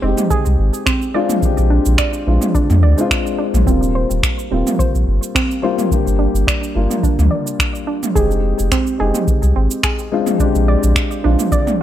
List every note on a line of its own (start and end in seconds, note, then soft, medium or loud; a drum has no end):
0.00 0.14 F1 medium
0.00 1.14 G#3 medium
0.00 0.02 C4 medium
0.00 1.11 C4 medium
0.00 0.29 C4 medium
0.00 0.04 D#4 medium
0.00 1.12 D#4 medium
0.00 0.05 G4 medium
0.05 1.13 G4 medium
0.17 mid tom medium
0.17 cabasa medium
0.30 0.56 G#4 medium
0.30 kick medium
0.30 cabasa soft
0.46 0.56 C2 medium
0.46 cabasa soft
0.59 0.70 G#1 loud
0.74 cabasa medium
0.86 1.02 C4 medium
0.86 finger snap medium
0.86 kick medium
0.86 cabasa soft
1.02 cabasa soft
1.14 1.39 G#3 medium
1.14 1.40 C4 medium
1.14 1.40 D4 medium
1.14 1.40 F4 loud
1.14 1.41 D5 medium
1.29 mid tom medium
1.29 cabasa medium
1.41 2.23 G#3 medium
1.41 2.24 C4 medium
1.41 2.24 D4 medium
1.41 2.25 G4 medium
1.41 kick medium
1.41 cabasa medium
1.58 1.79 A#1 loud
1.58 cabasa soft
1.70 1.97 D4 medium
1.86 1.96 A#1 medium
1.86 cabasa medium
1.98 2.24 D5 medium
1.98 finger snap medium
1.98 kick medium
1.98 cabasa soft
2.13 cabasa soft
2.26 2.38 A#1 medium
2.26 2.37 G#3 medium
2.26 2.37 C4 medium
2.26 2.37 D4 medium
2.26 2.38 F4 medium
2.42 mid tom medium
2.42 cabasa medium
2.55 2.71 D4 medium
2.55 kick loud
2.55 cabasa medium
2.70 2.84 F2 medium
2.70 mid tom medium
2.70 cabasa soft
2.82 2.94 D2 medium
2.82 3.10 D5 medium
2.97 3.64 G#3 medium
2.97 3.64 C4 medium
2.97 3.65 D4 medium
2.97 3.65 F4 loud
2.97 cabasa medium
3.11 finger snap loud
3.11 kick medium
3.11 cabasa soft
3.27 cabasa soft
3.38 3.66 D4 medium
3.54 3.64 A#1 loud
3.54 mid tom medium
3.54 cabasa medium
3.66 4.04 D#1 loud
3.66 4.47 G3 medium
3.66 4.48 A#3 medium
3.66 3.83 C4 medium
3.66 4.49 C4 medium
3.66 4.49 F4 medium
3.66 kick loud
3.66 cabasa soft
3.83 cabasa soft
3.95 4.22 C5 medium
4.10 4.20 D#1 medium
4.10 cabasa medium
4.23 finger snap medium
4.23 kick loud
4.23 cabasa soft
4.39 cabasa soft
4.50 4.63 D#1 medium
4.50 5.60 G3 medium
4.50 5.60 A#3 medium
4.50 4.78 C4 medium
4.50 5.61 C4 medium
4.50 5.62 F4 medium
4.67 mid tom medium
4.67 cabasa medium
4.79 5.05 C5 medium
4.79 kick loud
4.79 cabasa medium
4.94 5.04 A#1 medium
4.94 cabasa soft
5.07 5.19 G1 loud
5.23 cabasa medium
5.35 5.51 C4 medium
5.35 finger snap loud
5.35 kick loud
5.35 cabasa medium
5.51 cabasa soft
5.62 5.88 G3 medium
5.62 5.88 A#3 medium
5.62 5.89 C4 medium
5.62 5.89 F4 loud
5.62 5.90 C5 medium
5.78 mid tom medium
5.78 cabasa medium
5.90 6.72 G3 medium
5.90 6.72 A#3 medium
5.90 6.73 D4 medium
5.90 6.73 G4 medium
5.90 kick medium
5.90 cabasa medium
6.06 6.27 G1 medium
6.06 cabasa soft
6.19 6.46 D4 medium
6.34 6.44 G1 medium
6.34 cabasa medium
6.47 6.73 D5 medium
6.47 finger snap medium
6.47 kick loud
6.47 cabasa soft
6.64 cabasa soft
6.75 6.87 G1 medium
6.75 6.85 G3 medium
6.75 6.85 A#3 medium
6.75 6.86 D4 medium
6.75 6.86 F4 medium
6.91 mid tom medium
6.91 cabasa medium
7.03 7.20 D4 medium
7.03 kick loud
7.03 cabasa medium
7.18 7.29 D2 medium
7.18 mid tom medium
7.18 cabasa soft
7.31 7.58 D5 medium
7.47 cabasa medium
7.59 finger snap medium
7.59 kick medium
7.59 cabasa medium
7.75 cabasa soft
7.87 8.14 D4 medium
8.03 mid tom medium
8.03 cabasa medium
8.14 8.53 F1 medium
8.14 8.96 G#3 medium
8.14 8.97 C4 medium
8.14 8.97 D#4 medium
8.14 8.98 G4 medium
8.14 8.41 G#4 medium
8.14 kick loud
8.14 cabasa medium
8.31 cabasa soft
8.59 8.69 F1 medium
8.59 cabasa medium
8.72 8.88 C4 medium
8.72 finger snap medium
8.72 kick loud
8.72 cabasa medium
8.87 cabasa soft
8.98 9.11 F1 medium
8.98 10.08 G#3 medium
8.98 10.09 C4 medium
8.98 10.09 D#4 medium
8.98 10.10 G4 medium
8.98 9.27 G#4 medium
9.14 mid tom medium
9.14 cabasa medium
9.28 kick loud
9.28 cabasa medium
9.42 9.53 C2 medium
9.42 cabasa soft
9.56 9.68 G#1 loud
9.56 9.83 C4 medium
9.71 cabasa medium
9.83 10.09 G#4 medium
9.83 finger snap medium
9.83 kick loud
9.83 cabasa medium
9.99 cabasa soft
10.12 10.37 G#3 medium
10.12 10.37 C4 medium
10.12 10.37 D4 medium
10.12 10.38 F4 loud
10.26 mid tom medium
10.26 cabasa medium
10.38 11.20 G#3 medium
10.38 11.21 C4 medium
10.38 10.56 D4 medium
10.38 11.21 D4 medium
10.38 11.22 G4 medium
10.38 kick loud
10.38 cabasa medium
10.55 10.76 A#1 medium
10.55 cabasa soft
10.68 10.95 D5 medium
10.83 10.93 A#1 medium
10.83 cabasa medium
10.96 finger snap medium
10.96 kick loud
10.96 cabasa soft
11.11 cabasa soft
11.23 11.36 A#1 medium
11.23 11.34 G#3 medium
11.23 11.34 C4 medium
11.23 11.51 D4 medium
11.23 11.34 D4 medium
11.23 11.35 F4 medium
11.39 mid tom medium
11.39 cabasa medium
11.52 11.78 D5 medium
11.52 kick loud
11.52 cabasa medium
11.67 mid tom medium
11.67 cabasa soft